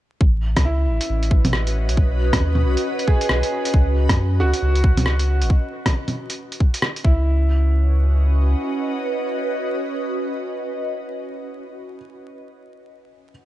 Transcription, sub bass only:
0.21 0.55 A1 medium
0.57 0.88 C#2 loud
0.87 0.99 A1 medium
1.09 1.90 A1 medium
1.89 2.31 B1 loud
2.33 2.65 D#2 loud
2.64 2.76 B1 medium
3.30 3.42 B1 medium
3.74 4.08 C#2 medium
4.10 4.42 F#2 loud
4.40 4.53 C#2 medium
4.62 5.43 C#2 medium
5.42 5.50 G#1 loud
7.04 8.55 C#2 loud

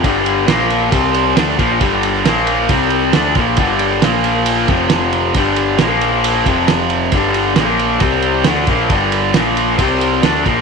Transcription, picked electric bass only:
0.04 0.45 G1 medium
0.48 0.89 A#1 medium
0.92 1.34 C2 medium
1.37 1.58 D2 medium
1.59 1.80 A#1 medium
1.81 2.22 G1 medium
2.26 2.67 A#1 medium
2.69 3.11 C2 medium
3.15 3.35 D2 medium
3.36 3.57 A#1 medium
3.58 3.99 G1 medium
4.02 4.65 A#1 medium
4.69 5.31 F1 medium
5.35 5.76 G1 medium
5.79 6.42 A#1 medium
6.46 7.09 F1 medium
7.12 7.54 G1 medium
7.57 7.98 A#1 medium
8.01 8.42 C2 medium
8.45 8.66 D2 medium
8.68 8.89 A#1 medium
8.90 9.31 G1 medium
9.34 9.75 A#1 medium
9.78 10.20 C2 medium
10.24 10.44 D2 medium
10.46 10.61 A#1 medium

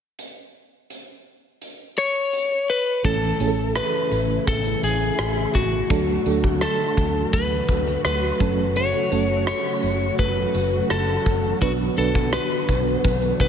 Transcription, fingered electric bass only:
3.05 3.30 A1 medium
3.40 3.79 A1 medium
4.11 4.37 A1 medium
4.47 4.73 A1 medium
4.83 5.09 A1 medium
5.19 5.44 A1 medium
5.55 5.80 A1 medium
5.90 6.16 D2 medium
6.26 6.64 D2 loud
6.97 7.23 D2 medium
7.33 7.59 D2 medium
7.69 7.94 D2 medium
8.04 8.30 D2 medium
8.40 8.92 F#1 medium
9.12 9.50 F#1 medium
9.83 10.09 F#1 loud
10.19 10.45 F#1 medium
10.55 10.80 F#1 medium
10.90 11.16 F#1 medium
11.26 11.52 F#1 medium
11.62 11.87 B1 medium
11.97 12.36 B1 medium
12.69 12.94 B1 medium
13.05 13.30 B1 medium
13.40 13.48 B1 medium

